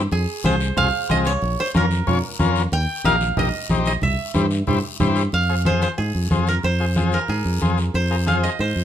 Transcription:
0.00 0.80 A#4 medium
0.00 0.45 C5 medium
0.11 0.25 F2 medium
0.11 2.09 G#4 medium
0.11 long guiro medium
0.44 0.70 C2 loud
0.44 0.56 C4 medium
0.44 0.56 F4 medium
0.44 0.56 G#4 medium
0.44 1.33 C5 medium
0.44 high conga medium
0.44 short guiro medium
0.60 short guiro medium
0.76 0.90 C2 medium
0.76 0.88 C4 medium
0.76 0.89 F4 medium
0.76 0.89 G#4 medium
0.76 2.22 F5 loud
0.76 high conga soft
0.76 low conga medium
0.76 long guiro medium
1.09 1.36 C2 medium
1.09 1.32 C4 medium
1.09 1.32 F4 medium
1.09 1.33 G#4 medium
1.09 1.17 D#5 loud
1.09 high conga medium
1.09 short guiro medium
1.25 1.66 C#5 loud
1.25 short guiro medium
1.42 1.55 A#1 loud
1.42 high conga soft
1.42 long guiro medium
1.60 1.66 C5 medium
1.74 2.01 F2 loud
1.74 1.86 C#4 medium
1.74 1.86 F4 medium
1.74 1.86 A#4 medium
1.74 3.61 A#4 medium
1.74 high conga medium
1.74 short guiro medium
1.91 short guiro medium
2.07 2.20 F2 medium
2.07 2.18 C#4 medium
2.07 2.19 F4 medium
2.07 2.19 C#5 medium
2.07 high conga soft
2.07 low conga medium
2.07 long guiro medium
2.39 2.65 F2 medium
2.39 2.62 C#4 medium
2.39 2.62 F4 medium
2.39 2.63 A#4 medium
2.39 high conga medium
2.39 short guiro medium
2.55 short guiro medium
2.72 2.85 D#2 loud
2.72 4.08 G5 loud
2.72 high conga soft
2.72 long guiro medium
3.05 3.31 A#1 loud
3.05 3.16 D#4 medium
3.05 3.16 G4 medium
3.05 3.16 A#4 medium
3.05 4.09 F5 loud
3.05 high conga medium
3.05 short guiro medium
3.21 short guiro medium
3.37 3.50 A#1 medium
3.37 3.48 D#4 medium
3.37 3.49 G4 medium
3.37 3.49 A#4 medium
3.37 3.87 D#5 medium
3.37 high conga soft
3.37 low conga medium
3.37 long guiro medium
3.69 3.96 A#1 medium
3.69 3.93 D#4 medium
3.69 3.93 G4 medium
3.69 3.93 C5 medium
3.69 high conga medium
3.69 short guiro medium
3.85 3.93 D#5 medium
3.85 short guiro medium
4.02 4.15 C2 loud
4.02 5.40 E5 medium
4.02 high conga soft
4.02 low conga medium
4.02 long guiro medium
4.34 4.61 G2 loud
4.34 4.46 E4 medium
4.34 4.46 G4 medium
4.34 4.47 C5 medium
4.34 high conga medium
4.34 short guiro medium
4.51 short guiro medium
4.67 4.81 G2 medium
4.67 4.79 E4 medium
4.67 4.79 G4 medium
4.67 4.79 C5 medium
4.67 high conga soft
4.67 low conga medium
4.67 long guiro medium
5.00 5.26 G2 medium
5.00 5.23 E4 medium
5.00 5.23 G4 medium
5.00 5.23 C5 medium
5.00 high conga medium
5.00 low conga medium
5.00 short guiro medium
5.16 short guiro medium
5.32 5.85 F2 medium
5.32 6.78 F5 medium
5.32 high conga soft
5.32 long guiro medium
5.49 5.55 F4 medium
5.49 5.55 G#4 medium
5.49 5.55 C5 medium
5.65 5.88 F4 medium
5.65 5.88 G#4 medium
5.65 5.89 C5 medium
5.65 5.82 C5 medium
5.65 high conga medium
5.65 short guiro medium
5.82 5.88 C5 medium
5.82 short guiro medium
5.98 6.11 G#2 medium
5.98 7.29 G#4 medium
5.98 high conga soft
5.98 long guiro medium
6.15 6.28 F2 medium
6.30 6.57 F2 medium
6.30 6.48 F4 medium
6.30 6.48 G#4 medium
6.30 6.48 C5 medium
6.30 high conga medium
6.30 short guiro medium
6.47 6.55 A#4 medium
6.47 short guiro medium
6.63 7.16 F2 loud
6.63 7.95 C5 medium
6.63 high conga soft
6.63 long guiro medium
6.80 6.86 F4 medium
6.80 6.86 G#4 medium
6.80 6.86 C5 medium
6.96 7.19 F4 medium
6.96 7.19 G#4 medium
6.96 7.19 C5 medium
6.96 high conga medium
6.96 short guiro medium
7.12 8.84 A#4 medium
7.12 short guiro medium
7.28 7.42 G#2 medium
7.28 8.84 G#4 medium
7.28 high conga soft
7.28 long guiro medium
7.45 7.58 F2 medium
7.61 7.88 F2 medium
7.61 7.79 F4 medium
7.61 7.79 G#4 medium
7.61 7.79 C5 medium
7.61 high conga medium
7.61 short guiro medium
7.78 short guiro medium
7.94 8.46 F2 medium
7.94 8.60 C5 medium
7.94 high conga soft
7.94 long guiro medium
8.11 8.16 F4 medium
8.11 8.16 G#4 medium
8.11 8.17 A#4 medium
8.27 8.50 F4 medium
8.27 8.50 G#4 medium
8.27 8.50 C5 medium
8.27 8.34 F5 medium
8.27 high conga medium
8.27 short guiro medium
8.43 8.84 D#5 medium
8.43 short guiro medium
8.59 8.72 G#2 medium
8.59 8.84 C5 medium
8.59 high conga soft
8.59 long guiro medium
8.76 8.84 F2 medium

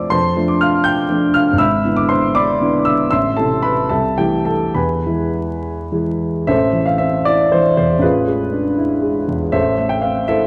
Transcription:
0.00 0.14 A2 medium
0.00 0.14 F3 soft
0.00 0.14 A3 soft
0.00 0.13 C4 medium
0.00 0.12 C5 medium
0.00 0.14 D5 medium
0.00 0.14 E5 medium
0.00 0.12 A5 medium
0.00 0.10 C6 medium
0.00 0.14 D6 medium
0.00 0.14 E6 medium
0.10 0.35 F2 medium
0.10 0.46 C5 medium
0.10 0.46 A5 medium
0.10 0.48 C6 loud
0.36 1.06 F3 soft
0.36 1.06 A3 soft
0.36 1.06 D4 soft
0.48 0.60 D6 medium
0.61 0.84 F5 medium
0.61 0.85 F6 medium
0.84 1.31 G5 medium
0.84 1.34 G6 loud
1.09 1.56 F3 soft
1.09 1.56 A3 soft
1.09 1.56 D4 medium
1.34 1.58 F5 medium
1.34 1.59 F6 medium
1.53 1.81 G#1 medium
1.58 1.95 E5 medium
1.58 1.95 B5 medium
1.58 1.97 E6 medium
1.84 2.57 D3 soft
1.84 2.57 B3 soft
1.84 2.57 E4 soft
1.96 2.10 D6 medium
2.09 2.34 C5 medium
2.09 2.35 C6 medium
2.35 2.82 D5 medium
2.35 2.83 B5 medium
2.35 2.86 D6 loud
2.61 3.07 D3 medium
2.61 3.07 B3 medium
2.61 3.08 E4 medium
2.85 3.09 E5 medium
2.85 3.09 E6 medium
3.11 3.37 A1 medium
3.11 3.36 E5 medium
3.11 3.36 C6 medium
3.11 3.37 E6 medium
3.37 3.86 C3 soft
3.37 3.87 A3 soft
3.37 3.87 E4 soft
3.37 3.62 A4 medium
3.37 3.63 A5 medium
3.62 3.89 B4 medium
3.62 3.90 B5 medium
3.89 4.17 C2 medium
3.89 4.16 A4 medium
3.89 4.16 E5 medium
3.89 4.18 A5 medium
4.18 4.73 E3 soft
4.18 4.73 A3 soft
4.18 4.73 E4 medium
4.18 4.45 G4 medium
4.18 4.47 G5 medium
4.45 4.74 A4 medium
4.45 4.76 A5 medium
4.74 5.05 E2 medium
4.74 6.16 B4 medium
4.74 6.16 G#5 medium
4.74 6.19 B5 medium
5.06 5.88 E3 soft
5.06 5.88 G#3 soft
5.06 5.88 E4 soft
5.92 6.44 E3 soft
5.92 6.44 G#3 soft
5.92 6.44 E4 soft
6.47 7.97 A1 medium
6.47 6.85 A4 medium
6.47 6.85 C5 medium
6.47 6.87 E5 medium
6.73 7.16 E3 soft
6.86 7.00 F5 medium
6.98 7.43 C4 medium
6.98 7.26 E5 medium
7.25 7.69 E4 medium
7.25 7.53 D5 medium
7.52 7.94 E3 medium
7.52 7.76 C5 medium
7.77 8.03 E2 soft
7.77 8.03 C5 medium
7.99 9.47 A1 medium
7.99 9.28 B4 medium
8.03 9.24 F4 medium
8.03 9.24 G#4 medium
8.27 8.68 G#3 soft
8.52 8.93 D4 soft
8.78 9.18 E4 medium
9.02 9.43 G#3 medium
9.28 9.53 E2 soft
9.52 10.47 A1 medium
9.52 9.88 A4 medium
9.52 9.88 C5 medium
9.52 9.90 E5 medium
9.78 10.18 A3 soft
9.89 10.02 G5 medium
10.01 10.44 C4 soft
10.01 10.28 F5 medium
10.28 10.47 E4 medium
10.28 10.47 A4 medium
10.28 10.47 C5 medium
10.28 10.47 E5 medium

